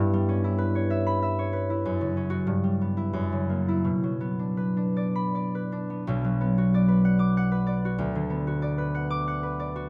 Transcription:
harp
Already playing: G2 G3 B3 E4 B4 E5 B5
0.13 G3
0.29 C#4
0.44 E4
0.58 B4
0.75 C#5
0.90 E5
1.07 B5
1.22 E5
1.39 C#5
1.53 B4
1.70 E4
1.85 F#2
2.01 C#3
2.17 C#4
2.30 F#4
2.47 G2
2.64 G3
2.81 B3
2.97 E4
3.13 F#2
3.32 C#3
3.49 A#3
3.68 E4
3.84 B2
4.03 F#3
4.21 B3
4.39 D4
4.57 B4
4.77 D4
4.97 D5
5.16 B5
5.35 D5
5.55 B4
5.72 D4
5.90 B3
6.07 B1 B2
6.24 F#3
6.41 B3
6.58 F#4
6.74 D5
6.88 B4
7.05 F#5
7.19 D6
7.37 F#5
7.52 B4
7.67 D5
7.85 F#4
7.98 D2
8.15 D3
8.30 B3
8.47 F#4
8.62 D5
8.78 B4
8.95 F#5
9.10 D6
9.28 F#5
9.43 B4
9.60 D5
9.76 F#4

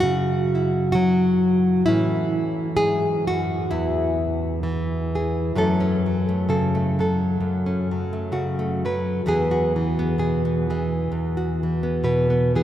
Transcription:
nylon-string guitar
Already playing: F#2 F#3 E4
0.00 C#3 F#4
0.55 E4
0.92 F#3 F#4
1.86 A2 E3 C#4 E4
2.77 G#2 G#4
3.27 F#2 F#4
3.71 E2 E4
4.63 E3
5.15 G#4
5.55 F#2 F#3 A3 C#4 A4
5.80 C#4
6.06 F#3
6.29 A3
6.49 C#3 A4
6.75 A3
6.99 F#3 A4
7.40 F#2
7.66 C#4
7.91 F#3
8.13 A3
8.32 C#3 F#4
8.59 A3
8.85 F#3 B4
9.26 E2 E3 B3 F#4 G#4
9.51 F#4
9.76 E3
9.99 B3
10.18 B2 G#4
10.45 B3
10.70 E3 G#4
11.12 E2
11.37 F#4
11.63 E3
11.83 B3
12.04 B2 B4
12.30 B3
12.55 E3 G#4

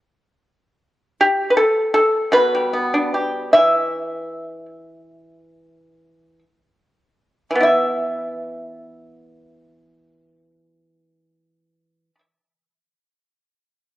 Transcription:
pipa
1.21 G4
1.51 B4
1.57 A4
1.94 A4
2.32 B2 B4
2.55 G3
2.73 B3
2.94 D4
3.14 G4
3.53 E3 E5
7.50 E3
7.55 B3
7.60 E4 E5

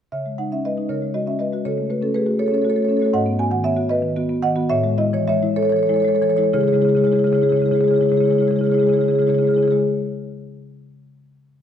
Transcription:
marimba
0.12 C#3 C#5 E5
0.26 G#3
0.38 G#3 D#4 F#5
0.52 C#4 E5
0.65 G#3 B4 D#5
0.77 G#3 D#4
0.89 C#3 A#4 C#5
1.02 G#3
1.14 G#3 F#4 D#5
1.27 C#4 E5
1.39 G#3 B4 D#5
1.53 G#3 F#4
1.65 C#3 A4 C#5
1.78 A3
1.90 A3 F#4 B4
2.02 C#4 A4
2.14 A3 G#4 B4
2.26 A3 F#4
2.39 A4 C#5
2.46 A4 C#5
2.51 C#4 A4 C#5
2.62 A3 F#4 A4 C#5
2.69 A4 C#5
2.76 A3 A4 C#5
2.83 A4 C#5
2.89 C#4 A4 C#5
2.97 A4 C#5
3.02 A3 F#4 A4
3.06 C#5
3.13 G#2 D#5 F#5
3.26 B3
3.39 B3 F#4 G#5
3.51 D#3 F#5
3.64 B3 C#5 E5
3.76 B3 F#4
3.89 B4 D#5
4.02 D#3
4.16 B3 F#4
4.29 B3
4.42 D#3 D#5 F#5
4.56 B3 F#4
4.70 A2 C#5 E5
4.84 G#3
4.98 G#3 E4 D#5
5.13 E3 C#5
5.28 G#3 C#5 E5
5.43 G#3 E4
5.56 A4 C#5
5.63 A4 C#5
5.69 E3 A4 C#5
5.76 A4 C#5
5.83 C#5
5.87 G#3 E4 A4 C#5
5.94 A4 C#5
6.00 A4 C#5
6.05 G#3 A4 C#5
6.15 A4 C#5
6.22 E3 A4 C#5
6.30 A4 C#5
6.37 G#3 E4 A4 C#5
6.44 C#5
6.53 C#3 G#3 E4 G#4 C#5
6.61 C#3 G#3 G#4 C#5
6.67 E4 G#4 C#5
6.73 C#3 G#3 E4 G#4 C#5
6.80 G#3 E4 G#4 C#5
6.84 C#3 E4
6.89 G#3 G#4 C#5
6.95 C#3 G#3 E4 G#4 C#5
7.04 C#3 G#3 E4 G#4 C#5
7.12 C#3 E4 G#4 C#5
7.16 G#3 E4 G#4 C#5
7.24 C#3 G#3 E4 G#4 C#5
7.31 C#3 G#3 E4 C#5
7.36 G#4 C#5
7.41 C#3 G#3 E4 G#4 C#5
7.49 C#3 G#3 E4 G#4 C#5
7.56 G#3 E4 G#4
7.61 C#3 E4 C#5
7.66 G#3 G#4 C#5
7.71 C#3 E4 G#4
7.75 G#3 C#5
7.79 C#3 E4 G#4
7.83 G#3 C#5
7.88 C#3 E4 G#4 C#5
7.94 G#3 E4 G#4 C#5
8.01 C#3 G#3 E4 G#4
8.06 E4 C#5
8.10 C#3 G#3 G#4 C#5
8.16 E4 G#4 C#5
8.20 C#3 G#3 E4
8.25 G#4 C#5
8.30 C#3 G#3 E4 G#4
8.35 G#3 E4 C#5
8.40 C#3 G#4 C#5
8.45 G#3 E4 G#4 C#5
8.51 C#3 E4
8.56 G#3 E4 G#4 C#5
8.61 C#3 G#4 C#5
8.65 C#3 G#3 E4
8.72 G#3 E4 G#4 C#5
8.78 C#3 E4 G#4 C#5
8.83 G#3 C#5
8.87 C#3 E4 G#4
8.92 G#3 G#4 C#5
8.97 C#3 E4 C#5
9.01 G#3 E4 G#4
9.06 C#3 G#4 C#5
9.11 G#3 E4 C#5
9.15 C#3 G#3 G#4
9.20 E4 G#4 C#5
9.27 C#3 G#3 E4 G#4 C#5
9.34 G#3 E4 G#4 C#5
9.39 C#3 E4 C#5
9.45 C#3 G#3 E4 G#4
9.50 G#3 C#5
9.55 C#3 E4 G#4 C#5
9.62 G#3 E4 G#4 C#5
9.68 C#3 E4 G#4
9.72 G#3 C#5

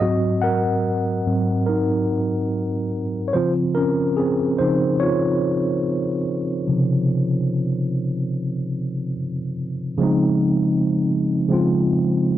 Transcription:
tine electric piano
0.00 G#2 F#3 C4 F#4 D#5
0.41 A#4 F#5
1.26 G#2 F#3 C4
1.66 D#4 A#4
3.28 C#5
3.33 C#3 F3 C4 F4 C5
3.75 C#4 A#4
4.17 C4 G#4
4.59 C#3 F3 C4 D#4 C5
5.00 F4 C#5
6.68 C3 C#3 F3
9.98 C#3 F3 G#3
10.02 C4 D#4
11.48 C#3 F3 G#3 C4
11.53 F4

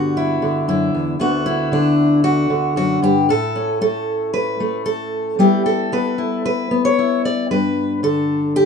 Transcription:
steel-string acoustic guitar
Already playing: G2 D3 B3 F#4
0.17 E4
0.42 D3
0.68 F#2 E4
0.95 E2
1.19 D2 D3 B3 D4 F#4
1.46 E4
1.72 D3 D4
2.24 F#4
2.50 D3
2.76 F#2 F#4
3.02 G2 G4
3.29 A2 A4
3.56 C#4
3.81 A3 A4
4.34 B4
4.60 A3
4.86 A4
5.39 G3 B3 E4 G4
5.66 A4
5.92 B3 B4
6.18 E4
6.46 B4
6.71 B3
6.85 C#5
6.99 E4
7.25 D5
7.51 G2 B4
8.03 D3 A4
8.56 G4

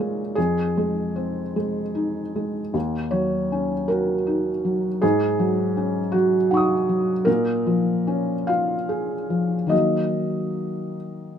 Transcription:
felt piano
Already playing: A#2 C#4 F4 G#4 A#4 C#5
0.00 G#3
0.35 F2 G#4
0.77 G#3
1.16 C4
1.56 G#3
1.95 D#4
2.36 G#3
2.74 D#2
3.11 F#3 C#5
3.52 C#4
3.88 F#4 A#4
4.27 D#4
4.65 F#3
5.02 G#2 G#4
5.39 F#3
5.77 C#4
6.12 F#3 F#4
6.51 D#4 F#5 C#6
6.57 D#6
6.89 F#3
7.25 A#2 A#4
7.67 F3
8.07 C#4
8.47 F4 F5
8.89 G#4
9.30 F3
9.67 D#3 F#3 A#3 F#4 D#5

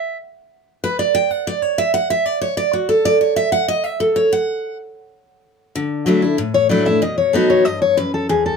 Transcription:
steel-string acoustic guitar
Already playing: E5
0.84 B4
0.99 D5
1.15 G5
1.31 F#5
1.47 D5
1.62 C#5
1.78 E5
1.94 F#5
2.10 E5
2.26 D5
2.41 C#5
2.57 D5
2.73 F#4
2.89 A4
3.05 D5
3.21 C#5
3.36 E5
3.52 F#5
3.68 D#5
3.84 E5
4.00 A4
4.16 C#5
4.33 F#5
5.75 D3
6.06 F#3 A3 D4 E4
6.22 D4 E4
6.38 A2
6.54 C#5
6.69 F#3 A3 D4 E4 D5
6.85 D4 E4 E5
7.02 D#5
7.18 C#5
7.33 F#3 B3 D#4 F#4 A4
7.50 C#5
7.65 G2 D#5
7.82 C#5
7.97 F#2 B4
8.14 A4
8.29 E2 G#4
8.46 A4

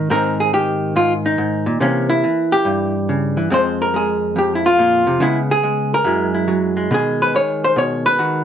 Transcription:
hollow-body jazz guitar
0.10 G#2 D#3 C4 D#4 A#4
0.40 G#4
0.53 D#3 G4
0.96 G#2 F4
1.26 D#4
1.38 G#2
1.66 A#2
1.80 C3 E3 A#3 C#4
2.10 E4
2.24 E3
2.52 G4
2.65 G2
3.09 C#3
3.37 E3
3.50 F2 G#3 C4 C5
3.82 A#4
3.94 G#3 G#4
4.36 F2 G4
4.55 E4
4.66 F4
4.79 A#2
5.07 C3
5.20 C#3 G#3 B3 E4
5.51 G#4
5.63 G#3
5.94 A#4
6.04 F#2 F#3 G#3 E4
6.34 E4
6.48 F#3
6.77 G#3
6.91 B2 D#3 G#3 G#4
7.22 B4
7.34 D#3 C#5
7.64 C5
7.76 B2 C#5
8.06 B4
8.19 D#3 F#4

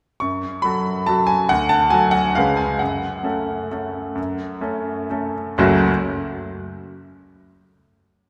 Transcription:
grand piano
0.20 F#2 C#6
0.62 F#3 F#4 A4 B5
1.06 F#3 F#4 A4 A5
1.27 G#5
1.49 D2 F#5
1.69 A5
1.90 F#3 F#4 A4 G#5
2.11 F#5
2.35 C#2 G#3 C#4 B4 F5
2.57 G#5
2.79 F#2 F#5
3.23 A3 C#4 A4
3.71 A3 C#4 A4
4.15 F#2
4.61 A3 C#4 A4
5.10 A3 C#4 A4
5.58 F#1 C#2 F#3 A3 C#4 F#4

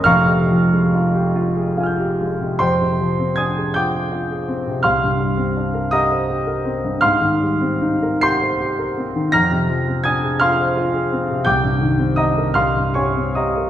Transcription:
grand piano
0.04 F1 F2 F5 A#5 C#6 F6
0.28 C3
0.51 F3
0.73 G#3
0.94 F4
1.15 G4
1.36 F4
1.56 G#4
1.77 F4 F5 G#5
1.83 F6 G6
1.99 G4
2.21 G#3
2.40 C3
2.59 F2 C5 G5 C6
2.81 C3
3.00 F3
3.19 C4
3.36 D4 G#5 D#6 G#6
3.57 G#4
3.74 F4 G5 D6 G6
3.94 G#4
4.12 F4
4.30 G#4
4.48 C4
4.67 C3
4.83 C2 F5 C6 F6
5.03 G2
5.19 G3
5.37 C4
5.56 D4
5.74 A#4
5.91 G4 D#5 A#5 D#6
6.12 C5
6.30 G4
6.47 A#4
6.65 C4
6.84 G2
7.01 G#2 F5 C6 F6
7.20 D#3
7.40 G3
7.61 C4
7.81 D#4
8.02 A#4
8.21 G4 C6 G6 C7
8.41 C5
8.60 G4
8.79 A#4
8.97 C4
9.15 D#3
9.32 F2 A#5 F6 A#6
9.52 C3
9.69 F3
9.88 C4
10.04 D4 G#5 D#6 G#6
10.23 G#4
10.40 F4 F5 C6 F6
10.60 C5
10.77 F4
10.94 G#4
11.12 C4
11.30 C3
11.45 C2 G5 D6 G6
11.64 G2
11.81 D#3
11.98 C4
12.16 D4 D#5 A#5 D#6
12.37 A#4
12.54 C2 F5 C6 F6
12.77 G2
12.94 C3 C#5 G#5 C#6
13.16 C4
13.35 G4 D#5 A#5 D#6
13.57 A#4

